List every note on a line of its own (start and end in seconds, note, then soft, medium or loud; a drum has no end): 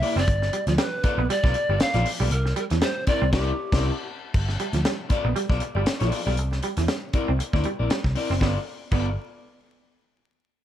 0.00 0.16 A#3 medium
0.00 0.16 E4 medium
0.00 0.17 G4 medium
0.00 0.17 D5 medium
0.00 0.20 E5 loud
0.00 open hi-hat medium
0.16 0.25 F#1 medium
0.16 0.24 C4 medium
0.16 0.68 D5 medium
0.16 snare soft
0.28 0.49 G1 loud
0.28 kick loud
0.28 closed hi-hat medium
0.42 muted clean electric guitar stroke soft
0.42 snare soft
0.53 0.63 G3 medium
0.53 closed hi-hat medium
0.67 0.76 D2 medium
0.67 0.75 F3 medium
0.67 0.73 D5 medium
0.67 snare soft
0.67 closed hi-hat medium
0.78 0.88 G3 medium
0.78 1.32 B4 loud
0.78 snare loud
0.78 closed hi-hat loud
1.03 1.18 B3 loud
1.03 1.18 F4 loud
1.03 1.18 A4 loud
1.03 1.19 D5 loud
1.03 muted picked electric bass stroke soft
1.03 muted clean electric guitar stroke soft
1.03 kick loud
1.03 snare soft
1.03 closed hi-hat medium
1.18 1.27 A#1 loud
1.18 1.26 B3 medium
1.29 1.39 G3 loud
1.29 1.83 D5 loud
1.29 muted picked electric bass stroke soft
1.29 closed hi-hat loud
1.43 1.53 B1 medium
1.43 1.55 B3 medium
1.43 1.55 F4 medium
1.43 1.55 A4 medium
1.43 1.55 D5 medium
1.43 kick loud
1.43 snare soft
1.54 muted clean electric guitar stroke soft
1.54 closed hi-hat medium
1.69 1.78 G1 medium
1.69 1.77 G3 medium
1.69 1.79 B3 soft
1.69 1.78 F4 soft
1.69 1.78 A4 soft
1.69 1.78 D5 medium
1.80 2.09 F5 loud
1.80 muted picked electric bass stroke medium
1.80 snare loud
1.80 closed hi-hat loud
1.94 2.03 A#1 medium
1.94 2.02 F3 medium
1.94 2.06 B3 medium
1.94 2.06 F4 medium
1.94 2.06 A4 medium
1.94 2.05 D5 medium
1.94 snare soft
1.94 closed hi-hat medium
2.05 muted clean electric guitar stroke soft
2.05 open hi-hat loud
2.20 2.29 B1 loud
2.20 2.27 G3 medium
2.20 2.30 B3 medium
2.20 2.30 F4 medium
2.20 2.29 A4 medium
2.20 2.29 D5 medium
2.31 2.52 C2 loud
2.31 2.55 A#4 medium
2.31 closed hi-hat loud
2.46 muted clean electric guitar stroke soft
2.46 snare soft
2.56 2.66 G3 medium
2.56 2.64 A#4 medium
2.56 closed hi-hat medium
2.70 2.80 E2 medium
2.70 2.78 E3 medium
2.70 snare soft
2.70 closed hi-hat medium
2.81 2.91 G3 medium
2.81 3.08 C5 medium
2.81 snare loud
2.81 closed hi-hat medium
3.06 3.21 C4 medium
3.06 3.22 E4 medium
3.06 3.22 A#4 loud
3.06 3.32 D5 loud
3.06 3.22 D5 loud
3.06 muted picked electric bass stroke soft
3.06 muted clean electric guitar stroke soft
3.06 kick loud
3.06 snare soft
3.06 closed hi-hat medium
3.22 3.31 C2 medium
3.22 3.29 C4 medium
3.32 3.50 C2 loud
3.32 3.51 C4 loud
3.32 3.51 E4 loud
3.32 4.05 G4 medium
3.32 3.51 A#4 loud
3.32 3.50 D5 loud
3.32 kick loud
3.32 snare loud
3.32 crash medium
3.72 3.89 C2 loud
3.72 3.90 C4 medium
3.72 3.89 E4 medium
3.72 3.89 A#4 medium
3.72 3.89 D5 medium
3.72 kick loud
3.72 snare loud
3.72 crash medium
4.34 4.55 G1 loud
4.34 kick loud
4.34 crash medium
4.49 muted clean electric guitar stroke soft
4.49 snare soft
4.59 4.69 G3 medium
4.59 closed hi-hat medium
4.73 4.83 D2 medium
4.73 4.82 F3 medium
4.73 snare soft
4.73 closed hi-hat medium
4.85 4.95 G3 medium
4.85 snare loud
4.85 closed hi-hat medium
5.09 5.24 B3 medium
5.09 5.25 F4 loud
5.09 5.25 A4 loud
5.09 5.25 D5 loud
5.09 muted picked electric bass stroke soft
5.09 muted clean electric guitar stroke soft
5.09 kick loud
5.09 snare soft
5.09 closed hi-hat medium
5.25 5.34 A#1 loud
5.25 5.32 B3 medium
5.36 5.45 G3 medium
5.36 muted picked electric bass stroke soft
5.36 closed hi-hat medium
5.50 5.59 B1 medium
5.50 5.62 B3 medium
5.50 5.62 F4 medium
5.50 5.62 A4 medium
5.50 5.61 D5 medium
5.50 kick medium
5.50 snare soft
5.60 muted clean electric guitar stroke soft
5.60 closed hi-hat medium
5.75 5.84 G1 medium
5.75 5.84 G3 medium
5.75 5.85 B3 soft
5.75 5.85 F4 soft
5.75 5.84 A4 medium
5.75 5.84 D5 medium
5.86 muted picked electric bass stroke medium
5.86 snare loud
5.86 closed hi-hat medium
6.00 6.10 A#1 medium
6.00 6.09 F3 medium
6.00 6.20 B3 medium
6.00 6.20 F4 medium
6.00 6.20 A4 medium
6.00 6.20 D5 medium
6.00 snare soft
6.00 closed hi-hat soft
6.12 muted clean electric guitar stroke soft
6.12 open hi-hat medium
6.26 6.38 B1 medium
6.26 6.34 G3 medium
6.26 6.36 B3 soft
6.26 6.35 F4 medium
6.26 6.35 A4 medium
6.26 6.35 D5 medium
6.37 6.59 C2 loud
6.37 closed hi-hat medium
6.52 muted clean electric guitar stroke soft
6.52 snare soft
6.62 6.73 G3 medium
6.62 closed hi-hat medium
6.77 6.87 E2 medium
6.77 6.85 E3 medium
6.77 snare soft
6.77 closed hi-hat medium
6.88 6.98 G3 medium
6.88 snare loud
6.88 closed hi-hat medium
7.13 7.28 C4 loud
7.13 7.28 E4 loud
7.13 7.29 A#4 loud
7.13 7.29 D5 medium
7.13 muted clean electric guitar stroke soft
7.13 muted picked electric bass stroke soft
7.13 kick loud
7.13 closed hi-hat medium
7.28 7.38 C2 loud
7.28 7.36 C4 medium
7.39 muted clean electric guitar stroke soft
7.39 muted picked electric bass stroke soft
7.39 closed hi-hat medium
7.53 7.63 D2 medium
7.53 7.61 A#3 medium
7.53 7.66 C4 medium
7.53 7.65 E4 medium
7.53 7.65 A#4 medium
7.53 7.65 D5 medium
7.53 kick medium
7.53 snare soft
7.63 7.75 G3 medium
7.63 closed hi-hat medium
7.79 7.89 A#1 medium
7.79 7.89 C4 soft
7.79 7.88 E4 medium
7.79 7.88 A#4 medium
7.79 7.88 D5 medium
7.90 8.00 G3 medium
7.90 snare loud
7.90 closed hi-hat medium
8.04 8.14 C2 medium
8.04 muted clean electric guitar stroke soft
8.04 kick medium
8.04 snare soft
8.15 8.30 C4 medium
8.15 8.30 E4 medium
8.15 8.30 A#4 medium
8.15 8.31 D5 loud
8.15 open hi-hat medium
8.30 8.39 F#1 medium
8.30 8.38 C4 medium
8.30 snare soft
8.40 8.56 G1 medium
8.40 8.57 B3 medium
8.40 8.52 B3 medium
8.40 8.57 F4 medium
8.40 8.58 A4 medium
8.40 8.58 D5 loud
8.40 kick loud
8.40 snare medium
8.91 9.16 G1 loud
8.91 9.08 B3 medium
8.91 9.09 F4 medium
8.91 9.09 A4 medium
8.91 9.09 D5 medium
8.91 kick loud
8.91 crash medium